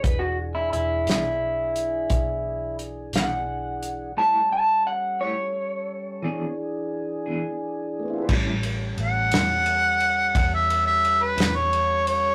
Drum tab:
CC |------------|------------|x-----------|
RD |------------|------------|-xxxxxxxxxxx|
HH |x-xx-xx-xx-x|------------|------------|
SD |---o-----o--|------------|---o-----o--|
BD |o-----o-----|------------|o-----o-----|